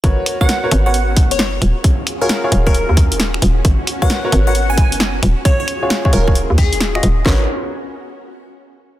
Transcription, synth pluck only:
X:1
M:4/4
L:1/16
Q:"Swing 16ths" 1/4=133
K:G#m
V:1 name="Synth pluck"
z3 f3 z f f z2 c c z3 | z3 A4 A6 z3 | z3 f3 z f f g g z4 z | c c z4 A z3 G3 z3 |
z16 |]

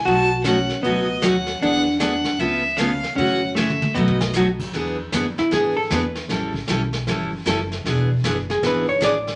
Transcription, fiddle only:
X:1
M:4/4
L:1/8
Q:"Swing" 1/4=154
K:Emix
V:1 name="Fiddle"
a2 f2 ^d2 f2 | f2 f2 e2 ^e2 | f2 e2 ^d2 z2 | z8 |
z8 | z8 |]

